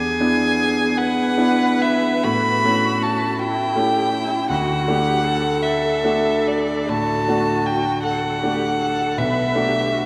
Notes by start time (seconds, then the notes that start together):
Already playing: E2 G#4 G#5
0.20 B3 D4 E4
0.98 B4 F#5
1.38 B3 D4 E4
1.82 E5
2.24 A2 F#4 B5
2.64 A3 C#4 E4
3.03 A5
3.39 E4 G5
3.75 A3 C#4 E4 G4
4.13 E4
4.50 D2 F#4 F#5
4.88 A3 D4 F#4 G4
5.26 A4
5.63 E5
6.04 A3 D4 F#4
6.47 D5
6.89 A2 F#4 A5
7.28 A3 D4 F#4
7.66 G5
8.03 A4 F#5
8.42 A3 D4 F#4 G4
8.80 A4
9.18 B1 B4 E5
9.55 A3 D4 F#4 G4
9.92 F#4